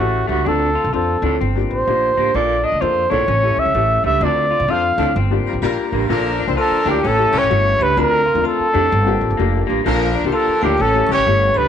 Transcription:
Already playing: trumpet F#4
0.00 upright bass A1, clean electric guitar A3, grand piano C#4 E4 G4 A4
0.27 upright bass C#2, baritone saxophone G2, clean electric guitar A3, trumpet F#4
0.45 upright bass D2, baritone saxophone D2, grand piano C4 D4 F4 A4, clean electric guitar D4, trumpet A4
0.75 clean electric guitar F4
0.84 upright bass C2
0.93 upright bass F2, grand piano C4 D4 F4 C5, clean electric guitar F4, trumpet A4
1.22 upright bass D2, baritone saxophone A2, grand piano C4 D4 F4 A4, clean electric guitar D4
1.41 upright bass G1, clean electric guitar C4
1.55 grand piano A#3 D4 F4 G4
1.70 upright bass A1, trumpet C5
1.87 upright bass A#1, grand piano A#3 D4 F4 G4, clean electric guitar A#3
2.17 upright bass A1, baritone saxophone G2, clean electric guitar A#3
2.34 upright bass A#1, baritone saxophone A#2, grand piano A#3 D4 F4 A4, clean electric guitar A#3, trumpet D5
2.64 clean electric guitar D4, trumpet D#5
2.72 upright bass D2
2.81 upright bass F2, grand piano A#3 D4 F4 A4, clean electric guitar F4, trumpet C5
3.10 upright bass A#1, baritone saxophone A2, grand piano A#3 D4 F4 A4, clean electric guitar D4, trumpet C#5
3.28 upright bass A1, clean electric guitar C#4
3.43 grand piano C#4 E4 G4 A4
3.56 upright bass B1, trumpet E5
3.65 upright bass C#2
3.74 upright bass A1, clean electric guitar A3, grand piano C#4 E4 G4 A4
4.04 upright bass C#2, baritone saxophone G2, clean electric guitar A3, trumpet E5
4.21 upright bass D2, baritone saxophone D2, grand piano C4 D4 F4 A4, clean electric guitar D4, trumpet D5
4.51 clean electric guitar F4
4.60 upright bass C2
4.68 upright bass F2, horn section A3 F4 C5, grand piano C4 D4 F4 A4, clean electric guitar F4, trumpet F5
4.97 upright bass D2, baritone saxophone A2, horn section A3 F4 C5, grand piano C4 D4 F4 A4, clean electric guitar D4
5.16 upright bass G1, clean electric guitar C4
5.30 grand piano A#3 D4 F4 G4
5.45 horn section G3 F4 A#4, muted upright bass stroke
5.53 upright bass A1
5.62 upright bass A#1, horn section G3 F4 A#4, grand piano A#3 D4 F4 G4, clean electric guitar A#3
5.92 upright bass A1, baritone saxophone G2, clean electric guitar A#3
6.09 upright bass A#1, baritone saxophone A#2, horn section F3 D4 A#4, grand piano A#3 D4 F4 A4, clean electric guitar A#3
6.40 clean electric guitar D4
6.46 upright bass C2, grand piano A#3 D4 F4 C5, horn section C4 A4 C5
6.56 horn section F3 D4 A#4, clean electric guitar F4, trumpet A4, vibraphone A5
6.71 muted upright bass stroke
6.85 upright bass D2, baritone saxophone A2, grand piano A#3 D4 F4 A4, clean electric guitar D4, vibraphone G5
6.89 trumpet G4
7.03 upright bass A1, horn section E3 C#4 A4, clean electric guitar C#4, vibraphone A5
7.07 trumpet A4
7.17 grand piano A3 C#4 E4 G4
7.32 upright bass B1, horn section E3 C#4 G4, vibraphone C#6
7.38 upright bass A1, trumpet C#5
7.49 upright bass G1, grand piano A3 C#4 E4 F#4, clean electric guitar A3
7.79 upright bass C#2, baritone saxophone G2, clean electric guitar A3, vibraphone B5
7.83 trumpet B4
7.96 upright bass D2, baritone saxophone D2, grand piano A3 C4 D4 F4, clean electric guitar D4, vibraphone A#5
8.01 trumpet A#4
8.26 clean electric guitar F4
8.34 upright bass D#2, grand piano A3 C4 D4 F4
8.44 clean electric guitar F4, trumpet A4, vibraphone A5
8.59 muted upright bass stroke
8.73 upright bass F2, baritone saxophone A2, grand piano A3 C4 D4 G4, clean electric guitar D4
8.90 upright bass G1, clean electric guitar C4
9.05 grand piano A#3 D4 F4 G4
9.21 upright bass A1
9.30 upright bass G1
9.37 upright bass F1, clean electric guitar A#3, grand piano A#3 D4 F4 G4
9.67 upright bass A1, baritone saxophone G2, clean electric guitar A#3
9.84 upright bass A#1, baritone saxophone A#2, horn section F3 D4 A#4, clean electric guitar A#3, grand piano A#3 D4 F4 A4
10.15 clean electric guitar D4
10.24 upright bass C2, grand piano A#3 D4 F4 G4, horn section C4 A4 C5
10.32 horn section F3 D4 A#4, clean electric guitar F4, trumpet A4, vibraphone A5
10.47 muted upright bass stroke
10.61 upright bass D2, baritone saxophone A2, grand piano A#3 D4 F4 A4, clean electric guitar D4, trumpet G4, vibraphone G5
10.78 upright bass A1, horn section E3 C#4 A4, clean electric guitar C#4, trumpet A4, vibraphone A5
10.94 grand piano A3 C#4 E4 G4
11.07 upright bass B1, horn section E3 C#4 G4, vibraphone C#6
11.13 upright bass A1, trumpet C#5
11.26 upright bass G1, grand piano A3 C#4 E4 G4, clean electric guitar A3
11.54 upright bass C#2, baritone saxophone G2, clean electric guitar A3, trumpet B4, vibraphone B5

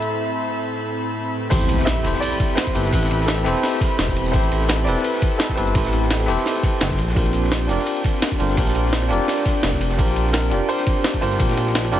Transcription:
Already playing: analog synth pad A2 C4 E4 A4 B5
0.02 closed hi-hat
1.50 analog synth bass A1, tine electric piano C4 E4 G4 A4, analog synth pad C4 G4 B5, grand piano C5, kick, closed hi-hat, crash, ride, impact
1.54 tine electric piano C5
1.61 closed hi-hat
1.69 analog synth bass A1, closed hi-hat, ride, shaker
1.79 snare
1.85 grand piano E5, snare, closed hi-hat, ride
1.97 shaker
2.03 analog synth bass E1, tine electric piano C4 E4 G4 A4 C5, snare, closed hi-hat, ride, shaker
2.14 snare
2.20 grand piano D5, closed hi-hat, ride
2.32 closed hi-hat, shaker
2.40 kick, closed hi-hat, ride, shaker
2.55 grand piano C5, snare, closed hi-hat, ride
2.67 kick, snare, shaker
2.74 analog synth bass G1, tine electric piano C4 E4 G4 A4 B4, closed hi-hat, ride, shaker
2.85 snare, closed hi-hat
2.90 analog synth bass A1, tine electric piano C4 E4 G4 A4, grand piano B4, kick, closed hi-hat, ride
2.95 tine electric piano B4
3.03 snare, closed hi-hat, shaker
3.11 analog synth bass A1, closed hi-hat, ride, shaker
3.20 snare
3.26 grand piano A4, snare, closed hi-hat, ride
3.38 snare, shaker
3.43 analog synth bass E1, tine electric piano C4 E4 G4 A4, grand piano A4, closed hi-hat, ride, shaker
3.48 tine electric piano C5
3.56 snare
3.63 snare, closed hi-hat, ride
3.73 snare, closed hi-hat, shaker
3.81 kick, snare, closed hi-hat, ride, shaker
3.99 analog synth bass E1, snare, closed hi-hat, ride
4.08 kick, snare, shaker
4.16 closed hi-hat, ride, shaker
4.26 snare, closed hi-hat
4.32 analog synth bass A1, tine electric piano C4 E4 G4 A4, analog synth pad A4, grand piano C5, kick, closed hi-hat, ride
4.36 tine electric piano C5
4.44 closed hi-hat
4.52 analog synth bass A1, closed hi-hat, ride, shaker
4.60 snare
4.69 snare, closed hi-hat, ride
4.79 shaker
4.84 analog synth bass E1, tine electric piano C4 E4 G4 A4, grand piano D5, snare, closed hi-hat, ride, shaker
4.89 tine electric piano B4
4.96 snare
5.02 grand piano B4, closed hi-hat, ride
5.14 snare, closed hi-hat, shaker
5.22 kick, closed hi-hat, ride, shaker
5.38 grand piano A4, snare, closed hi-hat, ride
5.49 kick, snare, shaker
5.56 analog synth bass G1, tine electric piano C4 E4 G4 A4 B4, grand piano C5, closed hi-hat, ride, shaker
5.67 closed hi-hat
5.73 analog synth bass A1, tine electric piano C4 E4 G4 A4 C5, kick, closed hi-hat, ride
5.85 snare, closed hi-hat, shaker
5.93 analog synth bass A1, closed hi-hat, ride, shaker
6.02 snare
6.11 snare, closed hi-hat, ride
6.20 snare, shaker
6.26 analog synth bass E1, tine electric piano C4 E4 G4 A4 C5, closed hi-hat, ride, shaker
6.37 snare
6.46 snare, closed hi-hat, ride
6.55 snare, closed hi-hat, shaker
6.63 kick, snare, closed hi-hat, ride, shaker
6.80 analog synth bass G1, snare, closed hi-hat, ride
6.90 kick, snare, shaker
6.98 analog synth bass A#1, analog synth pad D4 G4, closed hi-hat, ride, shaker
7.08 snare, closed hi-hat
7.14 analog synth bass A#1, tine electric piano D4 F4 G4 A#4 C5, kick, closed hi-hat, ride
7.26 closed hi-hat
7.33 analog synth bass A#1, closed hi-hat, ride, shaker
7.44 snare
7.52 snare, closed hi-hat, ride
7.61 shaker
7.67 analog synth bass F1, tine electric piano D4 F4 G4 A#4, snare, closed hi-hat, ride, shaker
7.71 tine electric piano D5
7.79 snare
7.86 closed hi-hat, ride
7.97 closed hi-hat, shaker
8.04 kick, closed hi-hat, ride, shaker
8.22 snare, closed hi-hat, ride
8.31 kick, snare, shaker
8.39 analog synth bass G1, tine electric piano D4 F4 G4 A#4 C5, closed hi-hat, ride, shaker
8.49 snare, closed hi-hat
8.56 analog synth bass A#1, tine electric piano D4 F4 G4 A#4 C5, kick, closed hi-hat, ride
8.67 snare, closed hi-hat, shaker
8.75 analog synth bass A#1, closed hi-hat, ride, shaker
8.85 snare
8.93 snare, closed hi-hat, ride
9.02 snare, shaker
9.09 analog synth bass F1, tine electric piano D4 F4 G4 A#4 D5, closed hi-hat, ride, shaker
9.20 snare
9.28 snare, closed hi-hat, ride
9.37 snare, closed hi-hat, shaker
9.46 kick, snare, closed hi-hat, ride, shaker
9.63 analog synth bass F1, snare, closed hi-hat, ride
9.73 kick, snare, shaker
9.81 closed hi-hat, ride, shaker
9.91 snare, closed hi-hat
9.97 analog synth bass A#1, tine electric piano D4 F4 G4 A#4, kick, closed hi-hat, ride
10.01 tine electric piano C5
10.08 closed hi-hat
10.16 analog synth bass A#1, closed hi-hat, ride, shaker
10.26 snare
10.33 grand piano A#4, snare, closed hi-hat, ride
10.43 shaker
10.50 analog synth bass F1, tine electric piano D4 F4 G4 A#4, closed hi-hat, shaker
10.54 tine electric piano D5
10.69 grand piano C5, closed hi-hat, ride
10.78 snare, closed hi-hat, shaker
10.87 kick, closed hi-hat, ride, shaker
11.04 snare, closed hi-hat, ride
11.14 kick, snare, shaker
11.21 analog synth bass G1, tine electric piano D4 F4 G4 A#4 C5, grand piano C5, closed hi-hat, ride, shaker
11.32 snare, closed hi-hat
11.38 analog synth bass A#1, tine electric piano D4 F4 G4 A#4 C5, kick, closed hi-hat, ride
11.49 snare, closed hi-hat, shaker
11.57 analog synth bass A#1, snare, closed hi-hat, ride, shaker
11.67 snare
11.75 snare, closed hi-hat, ride
11.85 snare, shaker
11.92 analog synth bass F1, tine electric piano D4 F4 G4 A#4 D5, snare, closed hi-hat, ride, shaker

